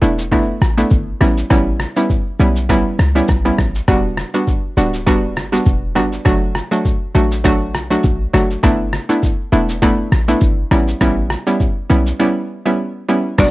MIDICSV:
0, 0, Header, 1, 5, 480
1, 0, Start_track
1, 0, Tempo, 594059
1, 1217, Time_signature, 4, 2, 24, 8
1, 10914, End_track
2, 0, Start_track
2, 0, Title_t, "Marimba"
2, 0, Program_c, 0, 12
2, 10826, Note_on_c, 0, 74, 102
2, 10914, Note_off_c, 0, 74, 0
2, 10914, End_track
3, 0, Start_track
3, 0, Title_t, "Synth pluck"
3, 0, Program_c, 1, 84
3, 14, Note_on_c, 1, 57, 79
3, 16, Note_on_c, 1, 59, 71
3, 18, Note_on_c, 1, 62, 71
3, 19, Note_on_c, 1, 64, 88
3, 202, Note_off_c, 1, 57, 0
3, 202, Note_off_c, 1, 59, 0
3, 204, Note_off_c, 1, 62, 0
3, 204, Note_off_c, 1, 64, 0
3, 255, Note_on_c, 1, 57, 97
3, 257, Note_on_c, 1, 59, 86
3, 258, Note_on_c, 1, 62, 84
3, 260, Note_on_c, 1, 64, 104
3, 596, Note_off_c, 1, 57, 0
3, 597, Note_off_c, 1, 59, 0
3, 598, Note_off_c, 1, 62, 0
3, 599, Note_off_c, 1, 64, 0
3, 627, Note_on_c, 1, 57, 80
3, 629, Note_on_c, 1, 59, 72
3, 630, Note_on_c, 1, 62, 69
3, 632, Note_on_c, 1, 64, 84
3, 950, Note_off_c, 1, 57, 0
3, 951, Note_off_c, 1, 59, 0
3, 952, Note_off_c, 1, 62, 0
3, 953, Note_off_c, 1, 64, 0
3, 975, Note_on_c, 1, 55, 76
3, 976, Note_on_c, 1, 59, 74
3, 978, Note_on_c, 1, 61, 70
3, 980, Note_on_c, 1, 64, 84
3, 1199, Note_off_c, 1, 55, 0
3, 1199, Note_off_c, 1, 59, 0
3, 1200, Note_off_c, 1, 61, 0
3, 1201, Note_off_c, 1, 64, 0
3, 1214, Note_on_c, 1, 55, 92
3, 1216, Note_on_c, 1, 59, 83
3, 1217, Note_on_c, 1, 61, 84
3, 1219, Note_on_c, 1, 64, 96
3, 1556, Note_off_c, 1, 55, 0
3, 1557, Note_off_c, 1, 59, 0
3, 1558, Note_off_c, 1, 61, 0
3, 1558, Note_off_c, 1, 64, 0
3, 1588, Note_on_c, 1, 55, 72
3, 1589, Note_on_c, 1, 59, 70
3, 1591, Note_on_c, 1, 61, 66
3, 1593, Note_on_c, 1, 64, 83
3, 1762, Note_off_c, 1, 55, 0
3, 1763, Note_off_c, 1, 59, 0
3, 1764, Note_off_c, 1, 61, 0
3, 1765, Note_off_c, 1, 64, 0
3, 1935, Note_on_c, 1, 55, 78
3, 1936, Note_on_c, 1, 59, 68
3, 1939, Note_on_c, 1, 61, 73
3, 1940, Note_on_c, 1, 64, 88
3, 2122, Note_off_c, 1, 55, 0
3, 2123, Note_off_c, 1, 59, 0
3, 2124, Note_off_c, 1, 61, 0
3, 2125, Note_off_c, 1, 64, 0
3, 2174, Note_on_c, 1, 55, 97
3, 2176, Note_on_c, 1, 59, 87
3, 2177, Note_on_c, 1, 61, 85
3, 2179, Note_on_c, 1, 64, 105
3, 2516, Note_off_c, 1, 55, 0
3, 2517, Note_off_c, 1, 59, 0
3, 2517, Note_off_c, 1, 61, 0
3, 2518, Note_off_c, 1, 64, 0
3, 2546, Note_on_c, 1, 55, 77
3, 2549, Note_on_c, 1, 59, 71
3, 2550, Note_on_c, 1, 61, 72
3, 2552, Note_on_c, 1, 64, 86
3, 2722, Note_off_c, 1, 55, 0
3, 2723, Note_off_c, 1, 59, 0
3, 2723, Note_off_c, 1, 61, 0
3, 2724, Note_off_c, 1, 64, 0
3, 2787, Note_on_c, 1, 55, 73
3, 2789, Note_on_c, 1, 59, 69
3, 2791, Note_on_c, 1, 61, 71
3, 2793, Note_on_c, 1, 64, 80
3, 2962, Note_off_c, 1, 55, 0
3, 2963, Note_off_c, 1, 59, 0
3, 2964, Note_off_c, 1, 61, 0
3, 2965, Note_off_c, 1, 64, 0
3, 3134, Note_on_c, 1, 55, 90
3, 3137, Note_on_c, 1, 59, 83
3, 3137, Note_on_c, 1, 62, 82
3, 3139, Note_on_c, 1, 66, 101
3, 3476, Note_off_c, 1, 55, 0
3, 3477, Note_off_c, 1, 59, 0
3, 3477, Note_off_c, 1, 62, 0
3, 3479, Note_off_c, 1, 66, 0
3, 3506, Note_on_c, 1, 55, 70
3, 3507, Note_on_c, 1, 59, 65
3, 3509, Note_on_c, 1, 62, 68
3, 3511, Note_on_c, 1, 66, 79
3, 3681, Note_off_c, 1, 55, 0
3, 3682, Note_off_c, 1, 59, 0
3, 3683, Note_off_c, 1, 62, 0
3, 3684, Note_off_c, 1, 66, 0
3, 3854, Note_on_c, 1, 55, 74
3, 3857, Note_on_c, 1, 59, 71
3, 3858, Note_on_c, 1, 62, 71
3, 3859, Note_on_c, 1, 66, 86
3, 4041, Note_off_c, 1, 55, 0
3, 4043, Note_off_c, 1, 59, 0
3, 4043, Note_off_c, 1, 62, 0
3, 4044, Note_off_c, 1, 66, 0
3, 4093, Note_on_c, 1, 55, 96
3, 4094, Note_on_c, 1, 59, 89
3, 4096, Note_on_c, 1, 62, 84
3, 4097, Note_on_c, 1, 66, 102
3, 4435, Note_off_c, 1, 55, 0
3, 4436, Note_off_c, 1, 59, 0
3, 4437, Note_off_c, 1, 62, 0
3, 4437, Note_off_c, 1, 66, 0
3, 4464, Note_on_c, 1, 55, 76
3, 4465, Note_on_c, 1, 59, 71
3, 4467, Note_on_c, 1, 62, 71
3, 4469, Note_on_c, 1, 66, 82
3, 4788, Note_off_c, 1, 55, 0
3, 4789, Note_off_c, 1, 59, 0
3, 4790, Note_off_c, 1, 62, 0
3, 4791, Note_off_c, 1, 66, 0
3, 4811, Note_on_c, 1, 55, 75
3, 4813, Note_on_c, 1, 59, 73
3, 4815, Note_on_c, 1, 62, 68
3, 4816, Note_on_c, 1, 66, 87
3, 5037, Note_off_c, 1, 55, 0
3, 5037, Note_off_c, 1, 59, 0
3, 5039, Note_off_c, 1, 62, 0
3, 5039, Note_off_c, 1, 66, 0
3, 5051, Note_on_c, 1, 54, 92
3, 5052, Note_on_c, 1, 57, 81
3, 5055, Note_on_c, 1, 62, 86
3, 5057, Note_on_c, 1, 66, 101
3, 5394, Note_off_c, 1, 54, 0
3, 5395, Note_off_c, 1, 57, 0
3, 5396, Note_off_c, 1, 62, 0
3, 5397, Note_off_c, 1, 66, 0
3, 5424, Note_on_c, 1, 54, 75
3, 5426, Note_on_c, 1, 57, 66
3, 5428, Note_on_c, 1, 62, 67
3, 5429, Note_on_c, 1, 66, 79
3, 5600, Note_off_c, 1, 54, 0
3, 5602, Note_off_c, 1, 57, 0
3, 5602, Note_off_c, 1, 62, 0
3, 5603, Note_off_c, 1, 66, 0
3, 5774, Note_on_c, 1, 54, 76
3, 5775, Note_on_c, 1, 57, 75
3, 5776, Note_on_c, 1, 62, 69
3, 5778, Note_on_c, 1, 66, 85
3, 5961, Note_off_c, 1, 54, 0
3, 5962, Note_off_c, 1, 57, 0
3, 5963, Note_off_c, 1, 62, 0
3, 5963, Note_off_c, 1, 66, 0
3, 6012, Note_on_c, 1, 54, 91
3, 6014, Note_on_c, 1, 57, 85
3, 6016, Note_on_c, 1, 62, 86
3, 6018, Note_on_c, 1, 66, 107
3, 6355, Note_off_c, 1, 54, 0
3, 6356, Note_off_c, 1, 57, 0
3, 6357, Note_off_c, 1, 62, 0
3, 6358, Note_off_c, 1, 66, 0
3, 6386, Note_on_c, 1, 54, 78
3, 6388, Note_on_c, 1, 57, 69
3, 6389, Note_on_c, 1, 62, 72
3, 6391, Note_on_c, 1, 66, 88
3, 6710, Note_off_c, 1, 54, 0
3, 6710, Note_off_c, 1, 57, 0
3, 6711, Note_off_c, 1, 62, 0
3, 6712, Note_off_c, 1, 66, 0
3, 6733, Note_on_c, 1, 54, 77
3, 6735, Note_on_c, 1, 57, 69
3, 6737, Note_on_c, 1, 62, 69
3, 6738, Note_on_c, 1, 66, 86
3, 6958, Note_off_c, 1, 54, 0
3, 6959, Note_off_c, 1, 57, 0
3, 6960, Note_off_c, 1, 62, 0
3, 6960, Note_off_c, 1, 66, 0
3, 6973, Note_on_c, 1, 57, 90
3, 6974, Note_on_c, 1, 59, 82
3, 6976, Note_on_c, 1, 62, 88
3, 6978, Note_on_c, 1, 64, 97
3, 7315, Note_off_c, 1, 57, 0
3, 7316, Note_off_c, 1, 59, 0
3, 7317, Note_off_c, 1, 62, 0
3, 7318, Note_off_c, 1, 64, 0
3, 7345, Note_on_c, 1, 57, 71
3, 7347, Note_on_c, 1, 59, 66
3, 7349, Note_on_c, 1, 62, 66
3, 7350, Note_on_c, 1, 64, 84
3, 7521, Note_off_c, 1, 57, 0
3, 7522, Note_off_c, 1, 59, 0
3, 7523, Note_off_c, 1, 62, 0
3, 7524, Note_off_c, 1, 64, 0
3, 7694, Note_on_c, 1, 57, 78
3, 7695, Note_on_c, 1, 59, 71
3, 7697, Note_on_c, 1, 62, 75
3, 7698, Note_on_c, 1, 64, 88
3, 7881, Note_off_c, 1, 57, 0
3, 7882, Note_off_c, 1, 59, 0
3, 7883, Note_off_c, 1, 62, 0
3, 7883, Note_off_c, 1, 64, 0
3, 7934, Note_on_c, 1, 57, 98
3, 7936, Note_on_c, 1, 59, 85
3, 7937, Note_on_c, 1, 62, 86
3, 7939, Note_on_c, 1, 64, 105
3, 8276, Note_off_c, 1, 57, 0
3, 8277, Note_off_c, 1, 59, 0
3, 8277, Note_off_c, 1, 62, 0
3, 8278, Note_off_c, 1, 64, 0
3, 8307, Note_on_c, 1, 57, 79
3, 8308, Note_on_c, 1, 59, 70
3, 8310, Note_on_c, 1, 62, 71
3, 8311, Note_on_c, 1, 64, 85
3, 8630, Note_off_c, 1, 57, 0
3, 8631, Note_off_c, 1, 59, 0
3, 8632, Note_off_c, 1, 62, 0
3, 8632, Note_off_c, 1, 64, 0
3, 8655, Note_on_c, 1, 55, 74
3, 8657, Note_on_c, 1, 59, 71
3, 8658, Note_on_c, 1, 61, 74
3, 8660, Note_on_c, 1, 64, 86
3, 8879, Note_off_c, 1, 55, 0
3, 8879, Note_off_c, 1, 59, 0
3, 8880, Note_off_c, 1, 61, 0
3, 8881, Note_off_c, 1, 64, 0
3, 8895, Note_on_c, 1, 55, 90
3, 8896, Note_on_c, 1, 59, 85
3, 8897, Note_on_c, 1, 61, 86
3, 8899, Note_on_c, 1, 64, 97
3, 9236, Note_off_c, 1, 55, 0
3, 9237, Note_off_c, 1, 59, 0
3, 9237, Note_off_c, 1, 61, 0
3, 9238, Note_off_c, 1, 64, 0
3, 9266, Note_on_c, 1, 55, 75
3, 9267, Note_on_c, 1, 59, 66
3, 9269, Note_on_c, 1, 61, 69
3, 9270, Note_on_c, 1, 64, 81
3, 9441, Note_off_c, 1, 55, 0
3, 9442, Note_off_c, 1, 59, 0
3, 9443, Note_off_c, 1, 61, 0
3, 9444, Note_off_c, 1, 64, 0
3, 9613, Note_on_c, 1, 55, 79
3, 9614, Note_on_c, 1, 59, 72
3, 9616, Note_on_c, 1, 61, 73
3, 9617, Note_on_c, 1, 64, 84
3, 9801, Note_off_c, 1, 55, 0
3, 9802, Note_off_c, 1, 59, 0
3, 9802, Note_off_c, 1, 61, 0
3, 9803, Note_off_c, 1, 64, 0
3, 9854, Note_on_c, 1, 55, 94
3, 9856, Note_on_c, 1, 59, 87
3, 9857, Note_on_c, 1, 61, 84
3, 9858, Note_on_c, 1, 64, 99
3, 10196, Note_off_c, 1, 55, 0
3, 10196, Note_off_c, 1, 59, 0
3, 10197, Note_off_c, 1, 61, 0
3, 10198, Note_off_c, 1, 64, 0
3, 10226, Note_on_c, 1, 55, 78
3, 10228, Note_on_c, 1, 59, 72
3, 10230, Note_on_c, 1, 61, 70
3, 10231, Note_on_c, 1, 64, 87
3, 10550, Note_off_c, 1, 55, 0
3, 10550, Note_off_c, 1, 59, 0
3, 10551, Note_off_c, 1, 61, 0
3, 10552, Note_off_c, 1, 64, 0
3, 10574, Note_on_c, 1, 55, 77
3, 10576, Note_on_c, 1, 59, 72
3, 10577, Note_on_c, 1, 61, 74
3, 10579, Note_on_c, 1, 64, 84
3, 10798, Note_off_c, 1, 55, 0
3, 10799, Note_off_c, 1, 59, 0
3, 10800, Note_off_c, 1, 61, 0
3, 10801, Note_off_c, 1, 64, 0
3, 10813, Note_on_c, 1, 55, 90
3, 10814, Note_on_c, 1, 59, 82
3, 10816, Note_on_c, 1, 62, 84
3, 10818, Note_on_c, 1, 66, 100
3, 10914, Note_off_c, 1, 55, 0
3, 10914, Note_off_c, 1, 59, 0
3, 10914, Note_off_c, 1, 62, 0
3, 10914, Note_off_c, 1, 66, 0
3, 10914, End_track
4, 0, Start_track
4, 0, Title_t, "808-style bass"
4, 0, Program_c, 2, 38
4, 17, Note_on_c, 2, 28, 91
4, 382, Note_off_c, 2, 28, 0
4, 498, Note_on_c, 2, 33, 88
4, 680, Note_off_c, 2, 33, 0
4, 738, Note_on_c, 2, 31, 91
4, 920, Note_off_c, 2, 31, 0
4, 977, Note_on_c, 2, 33, 98
4, 1159, Note_off_c, 2, 33, 0
4, 1217, Note_on_c, 2, 33, 101
4, 1500, Note_off_c, 2, 33, 0
4, 1936, Note_on_c, 2, 35, 97
4, 2301, Note_off_c, 2, 35, 0
4, 2416, Note_on_c, 2, 37, 92
4, 2599, Note_off_c, 2, 37, 0
4, 2657, Note_on_c, 2, 35, 95
4, 2839, Note_off_c, 2, 35, 0
4, 2898, Note_on_c, 2, 33, 81
4, 3080, Note_off_c, 2, 33, 0
4, 3137, Note_on_c, 2, 28, 110
4, 3419, Note_off_c, 2, 28, 0
4, 3855, Note_on_c, 2, 26, 93
4, 4336, Note_on_c, 2, 31, 94
4, 4349, Note_off_c, 2, 26, 0
4, 4519, Note_off_c, 2, 31, 0
4, 4577, Note_on_c, 2, 28, 95
4, 4817, Note_on_c, 2, 31, 94
4, 4829, Note_off_c, 2, 28, 0
4, 4999, Note_off_c, 2, 31, 0
4, 5057, Note_on_c, 2, 30, 97
4, 5339, Note_off_c, 2, 30, 0
4, 5775, Note_on_c, 2, 33, 87
4, 6257, Note_on_c, 2, 35, 96
4, 6269, Note_off_c, 2, 33, 0
4, 6439, Note_off_c, 2, 35, 0
4, 6497, Note_on_c, 2, 33, 94
4, 6679, Note_off_c, 2, 33, 0
4, 6737, Note_on_c, 2, 30, 93
4, 6919, Note_off_c, 2, 30, 0
4, 6977, Note_on_c, 2, 31, 106
4, 7259, Note_off_c, 2, 31, 0
4, 7696, Note_on_c, 2, 28, 96
4, 8061, Note_off_c, 2, 28, 0
4, 8177, Note_on_c, 2, 33, 88
4, 8359, Note_off_c, 2, 33, 0
4, 8417, Note_on_c, 2, 31, 93
4, 8599, Note_off_c, 2, 31, 0
4, 8656, Note_on_c, 2, 33, 107
4, 8839, Note_off_c, 2, 33, 0
4, 8896, Note_on_c, 2, 33, 103
4, 9179, Note_off_c, 2, 33, 0
4, 9616, Note_on_c, 2, 35, 96
4, 9799, Note_off_c, 2, 35, 0
4, 10816, Note_on_c, 2, 28, 113
4, 10914, Note_off_c, 2, 28, 0
4, 10914, End_track
5, 0, Start_track
5, 0, Title_t, "Drums"
5, 18, Note_on_c, 9, 82, 55
5, 99, Note_off_c, 9, 82, 0
5, 151, Note_on_c, 9, 82, 82
5, 232, Note_off_c, 9, 82, 0
5, 256, Note_on_c, 9, 36, 104
5, 260, Note_on_c, 9, 82, 83
5, 263, Note_on_c, 9, 37, 95
5, 337, Note_off_c, 9, 36, 0
5, 341, Note_off_c, 9, 82, 0
5, 344, Note_off_c, 9, 37, 0
5, 498, Note_on_c, 9, 82, 47
5, 499, Note_on_c, 9, 37, 90
5, 579, Note_off_c, 9, 82, 0
5, 580, Note_off_c, 9, 37, 0
5, 635, Note_on_c, 9, 82, 69
5, 716, Note_off_c, 9, 82, 0
5, 732, Note_on_c, 9, 82, 73
5, 738, Note_on_c, 9, 36, 87
5, 812, Note_off_c, 9, 82, 0
5, 819, Note_off_c, 9, 36, 0
5, 977, Note_on_c, 9, 37, 87
5, 983, Note_on_c, 9, 82, 46
5, 1058, Note_off_c, 9, 37, 0
5, 1063, Note_off_c, 9, 82, 0
5, 1112, Note_on_c, 9, 82, 78
5, 1192, Note_off_c, 9, 82, 0
5, 1216, Note_on_c, 9, 37, 103
5, 1216, Note_on_c, 9, 82, 66
5, 1217, Note_on_c, 9, 36, 113
5, 1296, Note_off_c, 9, 37, 0
5, 1297, Note_off_c, 9, 82, 0
5, 1298, Note_off_c, 9, 36, 0
5, 1452, Note_on_c, 9, 37, 86
5, 1462, Note_on_c, 9, 82, 49
5, 1533, Note_off_c, 9, 37, 0
5, 1543, Note_off_c, 9, 82, 0
5, 1588, Note_on_c, 9, 82, 70
5, 1669, Note_off_c, 9, 82, 0
5, 1696, Note_on_c, 9, 36, 93
5, 1696, Note_on_c, 9, 82, 68
5, 1777, Note_off_c, 9, 36, 0
5, 1777, Note_off_c, 9, 82, 0
5, 1937, Note_on_c, 9, 82, 54
5, 2018, Note_off_c, 9, 82, 0
5, 2070, Note_on_c, 9, 82, 83
5, 2151, Note_off_c, 9, 82, 0
5, 2175, Note_on_c, 9, 36, 103
5, 2179, Note_on_c, 9, 82, 80
5, 2182, Note_on_c, 9, 37, 93
5, 2256, Note_off_c, 9, 36, 0
5, 2260, Note_off_c, 9, 82, 0
5, 2263, Note_off_c, 9, 37, 0
5, 2417, Note_on_c, 9, 82, 48
5, 2418, Note_on_c, 9, 37, 92
5, 2498, Note_off_c, 9, 82, 0
5, 2499, Note_off_c, 9, 37, 0
5, 2554, Note_on_c, 9, 82, 65
5, 2635, Note_off_c, 9, 82, 0
5, 2651, Note_on_c, 9, 82, 76
5, 2657, Note_on_c, 9, 36, 83
5, 2659, Note_on_c, 9, 37, 87
5, 2732, Note_off_c, 9, 82, 0
5, 2738, Note_off_c, 9, 36, 0
5, 2740, Note_off_c, 9, 37, 0
5, 2896, Note_on_c, 9, 37, 88
5, 2898, Note_on_c, 9, 36, 89
5, 2902, Note_on_c, 9, 82, 50
5, 2977, Note_off_c, 9, 37, 0
5, 2979, Note_off_c, 9, 36, 0
5, 2983, Note_off_c, 9, 82, 0
5, 3031, Note_on_c, 9, 82, 78
5, 3112, Note_off_c, 9, 82, 0
5, 3135, Note_on_c, 9, 37, 101
5, 3136, Note_on_c, 9, 82, 69
5, 3137, Note_on_c, 9, 36, 116
5, 3216, Note_off_c, 9, 37, 0
5, 3217, Note_off_c, 9, 36, 0
5, 3217, Note_off_c, 9, 82, 0
5, 3373, Note_on_c, 9, 37, 88
5, 3382, Note_on_c, 9, 82, 48
5, 3453, Note_off_c, 9, 37, 0
5, 3463, Note_off_c, 9, 82, 0
5, 3508, Note_on_c, 9, 82, 72
5, 3589, Note_off_c, 9, 82, 0
5, 3615, Note_on_c, 9, 36, 94
5, 3616, Note_on_c, 9, 82, 70
5, 3696, Note_off_c, 9, 36, 0
5, 3697, Note_off_c, 9, 82, 0
5, 3857, Note_on_c, 9, 82, 53
5, 3938, Note_off_c, 9, 82, 0
5, 3990, Note_on_c, 9, 82, 82
5, 4071, Note_off_c, 9, 82, 0
5, 4095, Note_on_c, 9, 36, 111
5, 4099, Note_on_c, 9, 82, 80
5, 4102, Note_on_c, 9, 37, 92
5, 4176, Note_off_c, 9, 36, 0
5, 4180, Note_off_c, 9, 82, 0
5, 4183, Note_off_c, 9, 37, 0
5, 4337, Note_on_c, 9, 82, 48
5, 4338, Note_on_c, 9, 37, 87
5, 4418, Note_off_c, 9, 82, 0
5, 4419, Note_off_c, 9, 37, 0
5, 4474, Note_on_c, 9, 82, 70
5, 4555, Note_off_c, 9, 82, 0
5, 4571, Note_on_c, 9, 82, 74
5, 4577, Note_on_c, 9, 36, 84
5, 4652, Note_off_c, 9, 82, 0
5, 4658, Note_off_c, 9, 36, 0
5, 4817, Note_on_c, 9, 37, 88
5, 4823, Note_on_c, 9, 82, 47
5, 4898, Note_off_c, 9, 37, 0
5, 4903, Note_off_c, 9, 82, 0
5, 4951, Note_on_c, 9, 82, 80
5, 5032, Note_off_c, 9, 82, 0
5, 5055, Note_on_c, 9, 37, 103
5, 5056, Note_on_c, 9, 82, 66
5, 5057, Note_on_c, 9, 36, 118
5, 5136, Note_off_c, 9, 37, 0
5, 5137, Note_off_c, 9, 36, 0
5, 5137, Note_off_c, 9, 82, 0
5, 5293, Note_on_c, 9, 37, 87
5, 5302, Note_on_c, 9, 82, 48
5, 5374, Note_off_c, 9, 37, 0
5, 5383, Note_off_c, 9, 82, 0
5, 5428, Note_on_c, 9, 82, 70
5, 5509, Note_off_c, 9, 82, 0
5, 5536, Note_on_c, 9, 36, 94
5, 5536, Note_on_c, 9, 82, 69
5, 5616, Note_off_c, 9, 36, 0
5, 5617, Note_off_c, 9, 82, 0
5, 5777, Note_on_c, 9, 82, 56
5, 5858, Note_off_c, 9, 82, 0
5, 5910, Note_on_c, 9, 82, 85
5, 5991, Note_off_c, 9, 82, 0
5, 6015, Note_on_c, 9, 36, 105
5, 6020, Note_on_c, 9, 82, 78
5, 6023, Note_on_c, 9, 37, 94
5, 6096, Note_off_c, 9, 36, 0
5, 6101, Note_off_c, 9, 82, 0
5, 6104, Note_off_c, 9, 37, 0
5, 6257, Note_on_c, 9, 82, 49
5, 6259, Note_on_c, 9, 37, 86
5, 6338, Note_off_c, 9, 82, 0
5, 6339, Note_off_c, 9, 37, 0
5, 6395, Note_on_c, 9, 82, 70
5, 6475, Note_off_c, 9, 82, 0
5, 6491, Note_on_c, 9, 82, 73
5, 6497, Note_on_c, 9, 36, 86
5, 6572, Note_off_c, 9, 82, 0
5, 6578, Note_off_c, 9, 36, 0
5, 6737, Note_on_c, 9, 37, 88
5, 6743, Note_on_c, 9, 82, 47
5, 6818, Note_off_c, 9, 37, 0
5, 6824, Note_off_c, 9, 82, 0
5, 6872, Note_on_c, 9, 82, 78
5, 6953, Note_off_c, 9, 82, 0
5, 6976, Note_on_c, 9, 37, 100
5, 6977, Note_on_c, 9, 36, 115
5, 6977, Note_on_c, 9, 82, 67
5, 7057, Note_off_c, 9, 37, 0
5, 7058, Note_off_c, 9, 36, 0
5, 7058, Note_off_c, 9, 82, 0
5, 7214, Note_on_c, 9, 37, 86
5, 7223, Note_on_c, 9, 82, 47
5, 7295, Note_off_c, 9, 37, 0
5, 7304, Note_off_c, 9, 82, 0
5, 7349, Note_on_c, 9, 82, 71
5, 7430, Note_off_c, 9, 82, 0
5, 7456, Note_on_c, 9, 36, 91
5, 7457, Note_on_c, 9, 82, 72
5, 7537, Note_off_c, 9, 36, 0
5, 7538, Note_off_c, 9, 82, 0
5, 7697, Note_on_c, 9, 82, 53
5, 7778, Note_off_c, 9, 82, 0
5, 7829, Note_on_c, 9, 82, 86
5, 7910, Note_off_c, 9, 82, 0
5, 7935, Note_on_c, 9, 36, 110
5, 7939, Note_on_c, 9, 82, 78
5, 7942, Note_on_c, 9, 37, 93
5, 8016, Note_off_c, 9, 36, 0
5, 8020, Note_off_c, 9, 82, 0
5, 8023, Note_off_c, 9, 37, 0
5, 8177, Note_on_c, 9, 82, 47
5, 8178, Note_on_c, 9, 37, 89
5, 8257, Note_off_c, 9, 82, 0
5, 8259, Note_off_c, 9, 37, 0
5, 8314, Note_on_c, 9, 82, 71
5, 8394, Note_off_c, 9, 82, 0
5, 8410, Note_on_c, 9, 82, 72
5, 8417, Note_on_c, 9, 36, 82
5, 8491, Note_off_c, 9, 82, 0
5, 8498, Note_off_c, 9, 36, 0
5, 8655, Note_on_c, 9, 37, 91
5, 8661, Note_on_c, 9, 82, 46
5, 8736, Note_off_c, 9, 37, 0
5, 8742, Note_off_c, 9, 82, 0
5, 8790, Note_on_c, 9, 82, 79
5, 8871, Note_off_c, 9, 82, 0
5, 8895, Note_on_c, 9, 37, 104
5, 8896, Note_on_c, 9, 36, 117
5, 8896, Note_on_c, 9, 82, 70
5, 8976, Note_off_c, 9, 37, 0
5, 8976, Note_off_c, 9, 82, 0
5, 8977, Note_off_c, 9, 36, 0
5, 9132, Note_on_c, 9, 37, 88
5, 9141, Note_on_c, 9, 82, 47
5, 9213, Note_off_c, 9, 37, 0
5, 9222, Note_off_c, 9, 82, 0
5, 9268, Note_on_c, 9, 82, 75
5, 9349, Note_off_c, 9, 82, 0
5, 9375, Note_on_c, 9, 36, 95
5, 9376, Note_on_c, 9, 82, 72
5, 9456, Note_off_c, 9, 36, 0
5, 9457, Note_off_c, 9, 82, 0
5, 9616, Note_on_c, 9, 82, 53
5, 9697, Note_off_c, 9, 82, 0
5, 9749, Note_on_c, 9, 82, 84
5, 9830, Note_off_c, 9, 82, 0
5, 10815, Note_on_c, 9, 37, 101
5, 10816, Note_on_c, 9, 36, 116
5, 10816, Note_on_c, 9, 49, 91
5, 10816, Note_on_c, 9, 82, 70
5, 10822, Note_on_c, 9, 64, 77
5, 10896, Note_off_c, 9, 37, 0
5, 10897, Note_off_c, 9, 36, 0
5, 10897, Note_off_c, 9, 49, 0
5, 10897, Note_off_c, 9, 82, 0
5, 10903, Note_off_c, 9, 64, 0
5, 10914, End_track
0, 0, End_of_file